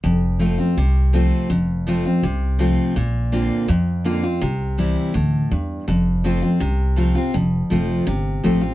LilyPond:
<<
  \new Staff \with { instrumentName = "Steel-string acoustic guitar" } { \time 4/4 \key f \major \tempo 4 = 164 << { r4 <f a c' f'>8 <c' f'>8 r4 <f a c' f'>4 | r4 <f a c' f'>8 <c' f'>8 r4 <f a c' f'>4 | r4 <d bes c' f'>4 r4 <d bes c' f'>8 <c' f'>8 | r4 <e g c' e'>4 r2 |
r4 <f a c' f'>8 <c' f'>8 r4 <f a c' f'>8 <c' f'>8 | r4 <f a c' f'>4 r4 <f a c' f'>8 <c' f'>8 | } \\ { f,2 c2 | f,2 c2 | bes,2 f,2 | c2 a,4 g,4 |
f,2 c2 | f,2 c2 | } >> }
  \new Staff \with { instrumentName = "Upright bass" } { \clef bass \time 4/4 \key f \major f,,2 c,2 | f,,2 c,2 | bes,,2 f,2 | c,2 d,4 e,4 |
f,,2 c,2 | f,,4 f,,4 g,,4 a,,4 | }
>>